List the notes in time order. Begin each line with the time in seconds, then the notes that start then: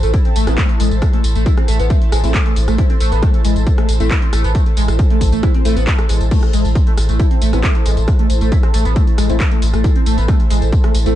Already playing: E4 A4 C5 A5
0.03 A1 A3, closed hi-hat, tambourine
0.14 E4, kick, closed hi-hat, tambourine
0.25 C4, closed hi-hat
0.36 A1 A3, open hi-hat, tambourine
0.47 A1 A3 B3 C4 E4, cross-stick, closed hi-hat, tambourine
0.58 A3, kick, clap, closed hi-hat, tambourine
0.69 closed hi-hat
0.80 A1 G#3, open hi-hat, tambourine
0.91 A1, closed hi-hat, tambourine
1.02 kick, cross-stick, closed hi-hat, tambourine
1.13 A3, closed hi-hat
1.24 A1, open hi-hat, tambourine
1.35 A1 A3, closed hi-hat, tambourine
1.46 E4, kick, closed hi-hat, tambourine
1.57 C4, cross-stick, closed hi-hat
1.68 A1 A3, open hi-hat, tambourine
1.79 A1 B3, closed hi-hat, tambourine
1.90 A3, kick, closed hi-hat, tambourine
2.02 closed hi-hat
2.12 A1 G#3, cross-stick, open hi-hat, tambourine
2.24 A1 A3 C4 E4, closed hi-hat, tambourine
2.34 kick, clap, closed hi-hat, tambourine
2.46 A3, closed hi-hat
2.56 A1, open hi-hat, tambourine
2.68 A1 A3, cross-stick, closed hi-hat, tambourine
2.78 E4, kick, closed hi-hat, tambourine
2.90 C4, closed hi-hat
3.00 A1 A3, open hi-hat, tambourine
3.12 A1 B3, closed hi-hat, tambourine
3.23 A3, kick, cross-stick, closed hi-hat, tambourine
3.34 closed hi-hat
3.45 A1 G#3, open hi-hat, tambourine
3.56 A1, closed hi-hat, tambourine
3.67 kick, closed hi-hat, tambourine
3.78 A3, cross-stick, closed hi-hat
3.89 A1, open hi-hat, tambourine
4.00 A1 A3 C4 E4, closed hi-hat, tambourine
4.11 E4, kick, clap, closed hi-hat, tambourine
4.22 C4, closed hi-hat
4.33 A1 A3, cross-stick, open hi-hat, tambourine
4.44 A1 B3, closed hi-hat, tambourine
4.55 A3, kick, closed hi-hat, tambourine
4.66 closed hi-hat
4.77 A1 G#3, open hi-hat, tambourine
4.88 A1, cross-stick, closed hi-hat, tambourine
4.99 kick, closed hi-hat, tambourine
5.10 A3, closed hi-hat
5.21 A1, kick, open hi-hat, tambourine
5.32 A1 A3, closed hi-hat, tambourine
5.43 E4, kick, cross-stick, closed hi-hat, tambourine
5.54 C4, closed hi-hat
5.65 A1 A3 C4 E4, open hi-hat, tambourine
5.76 A1 B3, closed hi-hat, tambourine
5.87 A3, kick, clap, closed hi-hat, tambourine
5.99 cross-stick, closed hi-hat
6.09 A1 G#3, open hi-hat, tambourine
6.21 A1, closed hi-hat, tambourine
6.31 A3, kick, closed hi-hat, crash, tambourine
6.43 cross-stick, closed hi-hat
6.53 A1 G#3, open hi-hat, tambourine
6.65 A1, closed hi-hat, tambourine
6.75 kick, closed hi-hat, tambourine
6.87 A3, closed hi-hat
6.98 A1, cross-stick, open hi-hat, tambourine
7.09 A1 A3, closed hi-hat, tambourine
7.19 E4, kick, closed hi-hat, tambourine
7.31 C4, closed hi-hat
7.42 A1 A3, open hi-hat, tambourine
7.53 A1 A3 B3 C4 E4, cross-stick, closed hi-hat, tambourine
7.64 A3, kick, clap, closed hi-hat, tambourine
7.75 closed hi-hat
7.86 A1 G#3, open hi-hat, tambourine
7.97 A1, closed hi-hat, tambourine
8.08 kick, cross-stick, closed hi-hat, tambourine
8.19 A3, closed hi-hat
8.30 A1, open hi-hat, tambourine
8.41 A1 A3, closed hi-hat, tambourine
8.52 E4, kick, closed hi-hat, tambourine
8.63 C4, cross-stick, closed hi-hat
8.74 A1 A3, open hi-hat, tambourine
8.85 A1 B3, closed hi-hat, tambourine
8.96 A3, kick, closed hi-hat, tambourine
9.07 closed hi-hat
9.18 A1 G#3, cross-stick, open hi-hat, tambourine
9.29 A1 A3 C4 E4, closed hi-hat, tambourine
9.40 kick, clap, closed hi-hat, tambourine
9.51 A3, closed hi-hat
9.62 A1, open hi-hat, tambourine
9.74 A1 A3, cross-stick, closed hi-hat, tambourine
9.84 E4, kick, closed hi-hat, tambourine
9.96 C4, closed hi-hat
10.06 A1 A3, open hi-hat, tambourine
10.18 A1 B3, closed hi-hat, tambourine
10.28 A3, kick, cross-stick, closed hi-hat, tambourine
10.40 closed hi-hat
10.50 A1 G#3, open hi-hat, tambourine
10.62 A1, closed hi-hat, tambourine
10.72 kick, closed hi-hat, tambourine
10.84 A3, cross-stick, closed hi-hat
10.94 A1, open hi-hat, tambourine
11.06 A1 A3 C4 E4, closed hi-hat, tambourine